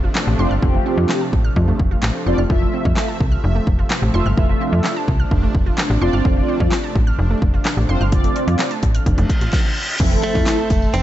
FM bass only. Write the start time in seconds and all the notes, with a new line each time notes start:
0.27 A1
0.39 F1
0.51 G1
0.62 F1
0.98 F2
1.33 A1
1.56 F2
1.79 F1
2.03 A1
2.26 F1
2.38 F1
2.50 F1
2.85 F2
3.20 C2
3.44 F1
3.67 F1
4.02 A1
4.14 F1
4.26 G1
4.37 F1
4.73 F2
5.08 C2
5.31 F1
5.55 F1
5.90 A1
6.02 F1
6.13 G1
6.25 F1
6.60 F2
6.95 A1
7.19 F1
7.42 F1
7.77 A1
7.89 F1
8.01 G1
8.12 F1
8.48 F2
8.83 A1
9.06 F1
9.18 F1
9.41 A1
10.00 F1
10.35 F2
10.70 F1
10.94 F1